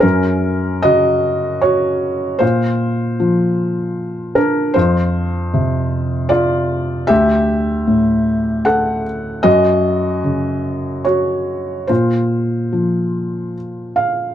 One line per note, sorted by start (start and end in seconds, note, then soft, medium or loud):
0.00 2.38 F#2 medium
0.00 0.80 C#4 medium
0.00 0.83 A#4 medium
0.82 2.42 C#3 soft
0.82 1.59 F#4 medium
0.82 1.62 D#5 medium
1.61 2.38 F#4 soft
1.61 2.41 C#5 medium
2.39 4.72 A#2 medium
2.39 4.33 F4 medium
2.39 4.36 C5 medium
3.20 4.76 F3 soft
4.35 4.73 D4 medium
4.35 4.75 A#4 medium
4.74 7.06 F2 medium
4.74 6.28 F4 medium
4.74 6.31 C5 medium
5.54 7.10 C3 soft
6.29 7.05 F4 medium
6.29 7.09 D5 medium
7.07 9.41 D2 medium
7.07 8.62 G4 medium
7.07 8.66 E5 medium
7.87 9.45 A2 soft
8.65 9.03 A4 medium
8.65 9.05 F#5 medium
9.43 11.85 F#2 medium
9.43 11.02 F#4 medium
9.43 11.05 D#5 medium
10.24 11.89 C#3 soft
11.05 11.85 F#4 soft
11.05 11.89 C#5 medium
11.87 14.35 A#2 medium
11.87 13.53 F4 soft
11.87 13.57 C5 medium
12.72 14.35 F3 soft
13.96 14.35 F5 medium